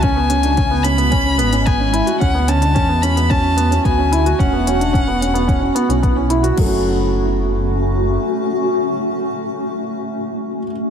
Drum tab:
CC |----------------|----------------|----------------|x---------------|
HH |x-xxx-xxx-xxx-xx|x-xxx-xxx-xxx-xx|x-xxx-xxx-xxx-xx|----------------|
BD |o---o---o---o---|o---o---o---o---|o---o---o---o---|o---------------|

CC |----------------|
HH |----------------|
BD |----------------|